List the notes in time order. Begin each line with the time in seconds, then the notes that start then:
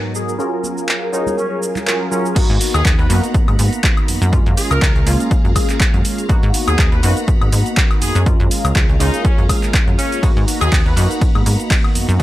Already playing: G#2 F#3 B3 D#4 F#4 A#4 G#5
0.15 G#4, shaker
0.29 shaker
0.39 F#3 C#4 F4 G#4 A#4 F5 G#5, shaker
0.53 tambourine
0.64 tambourine, high conga, shaker
0.78 tambourine, shaker
0.89 clap, shaker
1.02 tambourine
1.12 F#3 C#4 D#4 F4 G#4 A#4, shaker
1.26 tambourine, high conga, low conga, shaker
1.38 C#4, shaker
1.52 tambourine
1.62 tambourine, shaker
1.76 clap, tambourine, low conga, shaker
1.86 F#3 C#4 F4 G#4 A#4, clap, tambourine, shaker
1.99 tambourine
2.11 F#3 C#4 F4 G#4 A#4, shaker
2.26 shaker
2.35 G#2 A#3 B3 D#4 F#4 F#5 A#5 B5, kick, closed hi-hat, crash, shaker
2.50 G#2, closed hi-hat
2.61 open hi-hat, shaker
2.74 D#2 G#4, closed hi-hat, high woodblock, shaker
2.85 kick, clap, closed hi-hat, shaker
2.99 D#2 B4, closed hi-hat
3.09 F#2 A#3 B3 D#4 F#4 B4, open hi-hat, shaker
3.23 closed hi-hat, shaker
3.34 G#2, kick, closed hi-hat, shaker
3.48 G#2, closed hi-hat, high woodblock
3.59 G#2, open hi-hat, shaker
3.73 closed hi-hat, shaker
3.84 kick, clap, closed hi-hat, shaker
3.97 closed hi-hat, high woodblock
4.08 F#2, open hi-hat, shaker
4.22 F#2, closed hi-hat, shaker
4.32 G#3 A#3 C#4 F4 G#4 F5 A#5, kick, closed hi-hat, shaker
4.46 F#2, closed hi-hat
4.57 G#4, open hi-hat, shaker
4.71 C#2 A#4, closed hi-hat, high woodblock, shaker
4.82 kick, clap, closed hi-hat, shaker
4.95 C#2, closed hi-hat
5.06 C#2 G#3 A#3 C#4 F4, open hi-hat, shaker
5.20 closed hi-hat, shaker
5.31 kick, closed hi-hat, shaker
5.45 F#2, closed hi-hat
5.56 kick, open hi-hat, high woodblock, shaker
5.69 clap, closed hi-hat, shaker
5.80 kick, clap, closed hi-hat, shaker
5.94 F#2, closed hi-hat
6.05 open hi-hat, shaker
6.18 closed hi-hat, shaker
6.29 G#2 A#3 B3 D#4 F#4 F#5 A#5 B5, kick, closed hi-hat, shaker
6.43 G#2, closed hi-hat
6.54 open hi-hat, shaker
6.68 D#2 G#4, closed hi-hat, high woodblock, shaker
6.79 kick, clap, closed hi-hat, shaker
6.92 D#2 B4, closed hi-hat
7.03 F#2 A#3 B3 D#4 F#4 B4, open hi-hat, shaker
7.17 closed hi-hat, shaker
7.28 G#2, kick, closed hi-hat, shaker
7.41 G#2, closed hi-hat, high woodblock
7.52 G#2, open hi-hat, shaker
7.66 closed hi-hat, shaker
7.77 kick, clap, closed hi-hat, shaker
7.91 closed hi-hat, high woodblock
8.02 F#2 G#4, open hi-hat, shaker
8.15 F#2, closed hi-hat, shaker
8.26 G#3 A#3 C#4 F4 G#4 F5 A#5, kick, closed hi-hat, shaker
8.40 F#2, closed hi-hat
8.51 open hi-hat, shaker
8.64 C#2, closed hi-hat, high woodblock, shaker
8.75 kick, clap, closed hi-hat, shaker
8.89 C#2, closed hi-hat
8.99 C#2 G#3 A#3 C#4 D#4 F4, open hi-hat, shaker
9.14 closed hi-hat, shaker
9.24 C#4, kick, closed hi-hat, shaker
9.38 F#2, closed hi-hat
9.49 kick, open hi-hat, high woodblock, shaker
9.63 clap, closed hi-hat, shaker
9.74 kick, clap, closed hi-hat, shaker
9.87 F#2, closed hi-hat
9.98 C#4, open hi-hat, shaker
10.12 closed hi-hat, shaker
10.22 G#2 A#3 B3 D#4 F#4 F#5 A#5 B5, kick, closed hi-hat, ride, shaker
10.37 G#2, closed hi-hat
10.48 open hi-hat, shaker
10.61 D#2 G#4, closed hi-hat, high woodblock, shaker
10.72 kick, clap, closed hi-hat, ride, shaker
10.86 D#2 B4, closed hi-hat
10.96 F#2 A#3 B3 D#4 F#4 B4, open hi-hat, shaker
11.11 closed hi-hat, shaker
11.21 G#2, kick, closed hi-hat, ride, shaker
11.35 G#2, closed hi-hat, high woodblock
11.46 G#2, open hi-hat, shaker
11.60 closed hi-hat, shaker
11.71 kick, clap, closed hi-hat, ride, shaker
11.84 closed hi-hat, high woodblock
11.95 F#2, open hi-hat, shaker
12.09 F#2, closed hi-hat, shaker
12.19 G#3 A#3 G#4 F5 A#5, kick